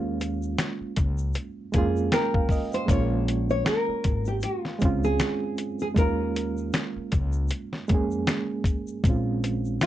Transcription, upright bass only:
0, 0, Header, 1, 3, 480
1, 0, Start_track
1, 0, Tempo, 769231
1, 1800, Time_signature, 4, 2, 24, 8
1, 6155, End_track
2, 0, Start_track
2, 0, Title_t, "Upright bass"
2, 0, Program_c, 0, 32
2, 0, Note_on_c, 0, 39, 107
2, 337, Note_off_c, 0, 39, 0
2, 610, Note_on_c, 0, 37, 99
2, 831, Note_off_c, 0, 37, 0
2, 1092, Note_on_c, 0, 41, 92
2, 1312, Note_off_c, 0, 41, 0
2, 1802, Note_on_c, 0, 34, 106
2, 2256, Note_off_c, 0, 34, 0
2, 2529, Note_on_c, 0, 32, 87
2, 2751, Note_off_c, 0, 32, 0
2, 3011, Note_on_c, 0, 37, 92
2, 3232, Note_off_c, 0, 37, 0
2, 3722, Note_on_c, 0, 39, 103
2, 4176, Note_off_c, 0, 39, 0
2, 4450, Note_on_c, 0, 37, 93
2, 4671, Note_off_c, 0, 37, 0
2, 4932, Note_on_c, 0, 41, 88
2, 5152, Note_off_c, 0, 41, 0
2, 5642, Note_on_c, 0, 34, 103
2, 6096, Note_off_c, 0, 34, 0
2, 6155, End_track
3, 0, Start_track
3, 0, Title_t, "Muted upright bass strokes"
3, 503, Note_on_c, 9, 29, 41
3, 565, Note_off_c, 9, 29, 0
3, 2423, Note_on_c, 9, 29, 48
3, 2485, Note_off_c, 9, 29, 0
3, 4343, Note_on_c, 9, 29, 50
3, 4406, Note_off_c, 9, 29, 0
3, 6155, End_track
0, 0, End_of_file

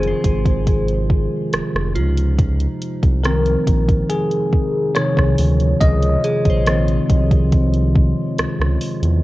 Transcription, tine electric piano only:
0, 0, Header, 1, 2, 480
1, 0, Start_track
1, 0, Tempo, 857143
1, 1335, Time_signature, 4, 2, 24, 8
1, 5172, End_track
2, 0, Start_track
2, 0, Title_t, "Tine electric piano"
2, 0, Program_c, 0, 4
2, 0, Control_c, 0, 64, 127
2, 0, Note_on_c, 0, 51, 54
2, 0, Note_on_c, 0, 56, 50
2, 0, Note_on_c, 0, 60, 61
2, 0, Note_on_c, 0, 68, 86
2, 0, Note_on_c, 0, 72, 87
2, 711, Note_off_c, 0, 72, 0
2, 1104, Note_off_c, 0, 51, 0
2, 1104, Note_off_c, 0, 68, 0
2, 1104, Control_c, 0, 64, 0
2, 1107, Note_off_c, 0, 56, 0
2, 1109, Note_off_c, 0, 60, 0
2, 1184, Control_c, 0, 64, 127
2, 1812, Note_on_c, 0, 70, 82
2, 1818, Note_on_c, 0, 51, 60
2, 1822, Note_on_c, 0, 53, 52
2, 1823, Note_on_c, 0, 60, 64
2, 2136, Note_off_c, 0, 51, 0
2, 2138, Note_off_c, 0, 53, 0
2, 2139, Note_off_c, 0, 60, 0
2, 2294, Note_on_c, 0, 68, 87
2, 2308, Note_off_c, 0, 70, 0
2, 2771, Note_on_c, 0, 73, 105
2, 2778, Note_on_c, 0, 51, 50
2, 2780, Note_on_c, 0, 53, 48
2, 2782, Note_on_c, 0, 48, 55
2, 2789, Note_off_c, 0, 68, 0
2, 2994, Note_off_c, 0, 51, 0
2, 2995, Note_off_c, 0, 53, 0
2, 2996, Note_off_c, 0, 48, 0
2, 3251, Note_on_c, 0, 75, 100
2, 3268, Note_off_c, 0, 73, 0
2, 3737, Note_on_c, 0, 51, 61
2, 3740, Note_on_c, 0, 53, 53
2, 3743, Note_on_c, 0, 60, 65
2, 4055, Note_off_c, 0, 51, 0
2, 4057, Note_off_c, 0, 53, 0
2, 4059, Note_off_c, 0, 60, 0
2, 4671, Note_off_c, 0, 75, 0
2, 5172, End_track
0, 0, End_of_file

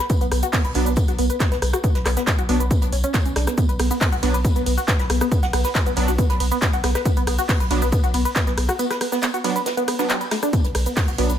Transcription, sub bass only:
0, 0, Header, 1, 2, 480
1, 0, Start_track
1, 0, Key_signature, 2, "minor"
1, 0, Tempo, 434783
1, 108, Time_signature, 4, 2, 24, 8
1, 12571, End_track
2, 0, Start_track
2, 0, Title_t, "Sub bass"
2, 0, Program_c, 0, 38
2, 233, Note_on_c, 0, 35, 81
2, 343, Note_off_c, 0, 35, 0
2, 350, Note_on_c, 0, 35, 101
2, 471, Note_off_c, 0, 35, 0
2, 714, Note_on_c, 0, 35, 79
2, 822, Note_off_c, 0, 35, 0
2, 829, Note_on_c, 0, 35, 98
2, 947, Note_off_c, 0, 35, 0
2, 953, Note_on_c, 0, 35, 81
2, 1066, Note_off_c, 0, 35, 0
2, 1193, Note_on_c, 0, 35, 76
2, 1302, Note_off_c, 0, 35, 0
2, 1308, Note_on_c, 0, 35, 105
2, 1431, Note_off_c, 0, 35, 0
2, 1674, Note_on_c, 0, 35, 81
2, 1781, Note_off_c, 0, 35, 0
2, 1788, Note_on_c, 0, 35, 101
2, 1910, Note_off_c, 0, 35, 0
2, 2153, Note_on_c, 0, 35, 80
2, 2261, Note_off_c, 0, 35, 0
2, 2268, Note_on_c, 0, 35, 101
2, 2390, Note_off_c, 0, 35, 0
2, 2632, Note_on_c, 0, 35, 80
2, 2741, Note_off_c, 0, 35, 0
2, 2748, Note_on_c, 0, 35, 102
2, 2865, Note_off_c, 0, 35, 0
2, 2871, Note_on_c, 0, 35, 82
2, 2985, Note_off_c, 0, 35, 0
2, 3113, Note_on_c, 0, 35, 76
2, 3221, Note_off_c, 0, 35, 0
2, 3228, Note_on_c, 0, 35, 107
2, 3351, Note_off_c, 0, 35, 0
2, 3593, Note_on_c, 0, 35, 78
2, 3701, Note_off_c, 0, 35, 0
2, 3708, Note_on_c, 0, 35, 101
2, 3830, Note_off_c, 0, 35, 0
2, 4073, Note_on_c, 0, 35, 76
2, 4182, Note_off_c, 0, 35, 0
2, 4189, Note_on_c, 0, 35, 100
2, 4311, Note_off_c, 0, 35, 0
2, 4554, Note_on_c, 0, 35, 78
2, 4662, Note_off_c, 0, 35, 0
2, 4668, Note_on_c, 0, 35, 103
2, 4787, Note_off_c, 0, 35, 0
2, 4794, Note_on_c, 0, 35, 81
2, 4906, Note_off_c, 0, 35, 0
2, 5034, Note_on_c, 0, 35, 78
2, 5143, Note_off_c, 0, 35, 0
2, 5149, Note_on_c, 0, 35, 106
2, 5271, Note_off_c, 0, 35, 0
2, 5512, Note_on_c, 0, 35, 81
2, 5621, Note_off_c, 0, 35, 0
2, 5628, Note_on_c, 0, 35, 99
2, 5750, Note_off_c, 0, 35, 0
2, 5994, Note_on_c, 0, 35, 77
2, 6102, Note_off_c, 0, 35, 0
2, 6109, Note_on_c, 0, 35, 104
2, 6231, Note_off_c, 0, 35, 0
2, 6473, Note_on_c, 0, 35, 82
2, 6581, Note_off_c, 0, 35, 0
2, 6588, Note_on_c, 0, 35, 104
2, 6706, Note_off_c, 0, 35, 0
2, 6712, Note_on_c, 0, 35, 81
2, 6826, Note_off_c, 0, 35, 0
2, 6951, Note_on_c, 0, 35, 77
2, 7061, Note_off_c, 0, 35, 0
2, 7067, Note_on_c, 0, 35, 102
2, 7190, Note_off_c, 0, 35, 0
2, 7433, Note_on_c, 0, 35, 81
2, 7540, Note_off_c, 0, 35, 0
2, 7547, Note_on_c, 0, 35, 99
2, 7670, Note_off_c, 0, 35, 0
2, 7911, Note_on_c, 0, 35, 81
2, 8019, Note_off_c, 0, 35, 0
2, 8025, Note_on_c, 0, 35, 100
2, 8149, Note_off_c, 0, 35, 0
2, 8391, Note_on_c, 0, 35, 78
2, 8500, Note_off_c, 0, 35, 0
2, 8506, Note_on_c, 0, 35, 101
2, 8624, Note_off_c, 0, 35, 0
2, 8630, Note_on_c, 0, 35, 82
2, 8745, Note_off_c, 0, 35, 0
2, 8870, Note_on_c, 0, 35, 78
2, 8979, Note_off_c, 0, 35, 0
2, 8986, Note_on_c, 0, 35, 106
2, 9109, Note_off_c, 0, 35, 0
2, 9351, Note_on_c, 0, 35, 80
2, 9459, Note_off_c, 0, 35, 0
2, 9466, Note_on_c, 0, 35, 99
2, 9589, Note_off_c, 0, 35, 0
2, 11753, Note_on_c, 0, 35, 78
2, 11863, Note_off_c, 0, 35, 0
2, 11870, Note_on_c, 0, 35, 102
2, 11991, Note_off_c, 0, 35, 0
2, 12234, Note_on_c, 0, 35, 78
2, 12342, Note_off_c, 0, 35, 0
2, 12349, Note_on_c, 0, 35, 102
2, 12469, Note_off_c, 0, 35, 0
2, 12475, Note_on_c, 0, 35, 83
2, 12571, Note_off_c, 0, 35, 0
2, 12571, End_track
0, 0, End_of_file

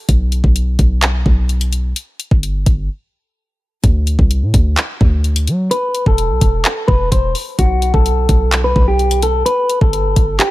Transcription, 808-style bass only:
0, 0, Header, 1, 2, 480
1, 0, Start_track
1, 0, Tempo, 468750
1, 88, Time_signature, 4, 2, 24, 8
1, 10760, End_track
2, 0, Start_track
2, 0, Title_t, "808-style bass"
2, 0, Program_c, 0, 38
2, 89, Note_on_c, 0, 35, 112
2, 434, Note_off_c, 0, 35, 0
2, 449, Note_on_c, 0, 35, 98
2, 794, Note_off_c, 0, 35, 0
2, 808, Note_on_c, 0, 35, 103
2, 1269, Note_off_c, 0, 35, 0
2, 1288, Note_on_c, 0, 35, 101
2, 1980, Note_off_c, 0, 35, 0
2, 2369, Note_on_c, 0, 31, 105
2, 2714, Note_off_c, 0, 31, 0
2, 2728, Note_on_c, 0, 31, 105
2, 2959, Note_off_c, 0, 31, 0
2, 3928, Note_on_c, 0, 38, 111
2, 4274, Note_off_c, 0, 38, 0
2, 4289, Note_on_c, 0, 36, 105
2, 4528, Note_on_c, 0, 45, 97
2, 4543, Note_off_c, 0, 36, 0
2, 4642, Note_off_c, 0, 45, 0
2, 4648, Note_on_c, 0, 38, 104
2, 4879, Note_off_c, 0, 38, 0
2, 5128, Note_on_c, 0, 38, 108
2, 5608, Note_on_c, 0, 54, 99
2, 5623, Note_off_c, 0, 38, 0
2, 5836, Note_off_c, 0, 54, 0
2, 6209, Note_on_c, 0, 28, 104
2, 6447, Note_on_c, 0, 35, 98
2, 6463, Note_off_c, 0, 28, 0
2, 6562, Note_off_c, 0, 35, 0
2, 6568, Note_on_c, 0, 28, 106
2, 6799, Note_off_c, 0, 28, 0
2, 7048, Note_on_c, 0, 28, 102
2, 7279, Note_off_c, 0, 28, 0
2, 7289, Note_on_c, 0, 28, 107
2, 7519, Note_off_c, 0, 28, 0
2, 7768, Note_on_c, 0, 35, 113
2, 8114, Note_off_c, 0, 35, 0
2, 8129, Note_on_c, 0, 35, 104
2, 8474, Note_off_c, 0, 35, 0
2, 8489, Note_on_c, 0, 35, 103
2, 8949, Note_off_c, 0, 35, 0
2, 8968, Note_on_c, 0, 35, 101
2, 9660, Note_off_c, 0, 35, 0
2, 10049, Note_on_c, 0, 31, 103
2, 10394, Note_off_c, 0, 31, 0
2, 10408, Note_on_c, 0, 31, 106
2, 10639, Note_off_c, 0, 31, 0
2, 10760, End_track
0, 0, End_of_file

